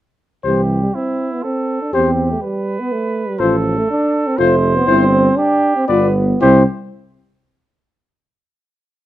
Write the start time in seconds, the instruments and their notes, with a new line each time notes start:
0.44 tuba C2, trombone E3, french horn G4, flugelhorn G4, trumpet C5
0.83 trombone G3
0.95 trombone C4, flugelhorn E4
1.33 trombone B3
1.43 trombone C4, flugelhorn A4
1.82 trombone D4
1.93 tuba E2, trombone C4, french horn G4, flugelhorn G4, trumpet C5
2.31 trombone A3
2.42 trombone G3, flugelhorn B4
2.79 trombone B3
2.92 trombone A3
3.28 trombone G3
3.39 tuba A1, trombone F3, french horn F4, flugelhorn A4, trumpet C5
3.77 trombone A3
3.90 trombone D4
4.26 trombone C4
4.38 tuba F1, trombone A3, french horn F4, flugelhorn C5, trumpet C5
4.76 trombone B3
4.87 tuba G1, trombone C4, french horn E4, trumpet C5
5.37 trombone D4, flugelhorn G4
5.76 trombone C4
5.88 tuba G1, trombone B3, french horn F4, flugelhorn B4, trumpet D5
6.41 tuba C2, trombone C4, french horn E4, flugelhorn G4, trumpet C5